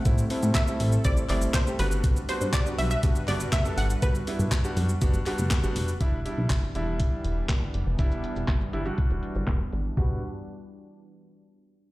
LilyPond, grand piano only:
\new Staff \with { instrumentName = "Grand piano" } { \time 4/4 \key g \major \tempo 4 = 121 <g a c' e'>16 r16 <g a c' e'>8 r16 <g a c' e'>8 r16 <g a c' e'>16 r16 <g a c' e'>8 r16 <g a c' g'>16 <g b d' fis'>8~ | <g b d' fis'>16 r16 <g b d' fis'>8 r16 <g b d' fis'>8 r16 <g b d' fis'>16 r16 <g b d' fis'>8 r16 <g b d' a'>8 r16 | <g b d' fis'>16 r16 <g b d' e'>8 r16 <g b d' fis'>8 r16 <g b d' fis'>16 r16 <g b d' fis'>8 r16 <g b d' fis'>8 r16 | <g d' e'>16 r16 <g d' e'>8. r16 <g d' e'>4. r4 |
<g d' e'>4 r8 <g d' e'>16 <g d' fis'>4. r8. | <g b fis'>8 r2. r8 | }